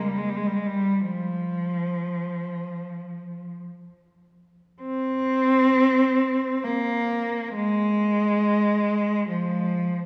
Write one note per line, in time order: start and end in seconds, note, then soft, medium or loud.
0.07 0.18 G3 medium
0.18 0.28 G#3 medium
0.29 0.39 G3 medium
0.36 0.47 G#3 medium
0.47 0.58 G3 medium
0.56 0.67 G#3 medium
0.66 1.02 G3 medium
1.00 3.54 F3 medium
4.82 6.62 C4 medium
6.64 7.54 A#3 medium
7.54 9.27 G#3 loud
9.30 10.06 F3 medium